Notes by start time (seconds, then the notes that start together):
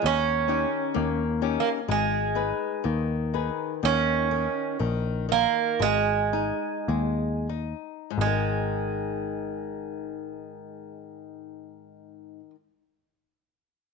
0.02 D#2 D#3
0.06 C#4
0.48 C#4 D#4 G4
0.94 D#2 A#3
1.42 C#4 D#4 G4
1.60 A#3
1.88 G#1 G#3
2.35 D#4 G#4 B4
2.84 D#2 D#3
3.34 D#4 G#4 B4
3.83 D#2 D#3 C#4
4.31 D#3
4.79 A#1 D#3
5.29 D#3 A#3
5.79 G#1 G#3
6.33 D#4
6.88 D#2 G#3
7.49 D#4
8.10 G#2
8.18 G#1 G#3
8.26 D#3